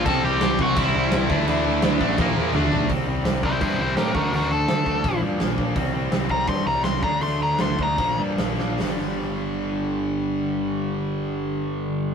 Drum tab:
CC |x-x-x-x-|x-x-----|--------|--------|
HH |--------|--------|o-o-o-o-|o-o-o-o-|
SD |--o---o-|--o-o---|--o---o-|--o---o-|
T2 |--------|------o-|--------|--------|
FT |--------|-------o|--------|--------|
BD |o--oo--o|---oo---|o--oo--o|---oo--o|

CC |--------|--------|--------|--------|
HH |o-o-o-o-|o-o-o-o-|o-------|--------|
SD |--o---o-|--o---oo|o-------|--------|
T2 |--------|--------|--------|--------|
FT |--------|--------|--------|--------|
BD |o--oo--o|---oo---|--------|--------|